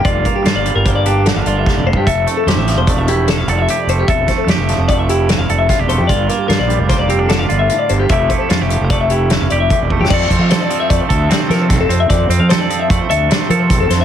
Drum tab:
CC |------------------------------|------------------------------|------------------------------|------------------------------|
HH |x--x--x--x--x--x--x--x--------|x--x--x--x--x--x--x--x--x--x--|x--x--x--x--x--x--x--x--x--x--|x--x--x--x--x--x--x--x--x--x--|
SD |------o-----------o-----o-----|------o--o--------o-----------|---o--o--o--------o-----o-----|------o-----o-----o-----------|
T2 |--------------------------o---|------------------------------|------------------------------|------------------------------|
BD |o--o--------o-----------o---o-|o-----------o-----------------|o--o--------o-----------o-----|o-----------o-----------------|

CC |------------------------------|x-----------------------------|------------------------------|
HH |x--x--x--x--x--x--x--x--x-----|---x--x--x--x--x--x--x--x--x--|x--x--x--x--x--x--x--x--x--x--|
SD |------o-----------o----------o|------o-----------o--o--o-----|------o-----------o--------o--|
T2 |------------------------------|------------------------------|------------------------------|
BD |o--o--------o-----------o--o--|o--o--------o--o--------o-----|o-----------o-----------o-----|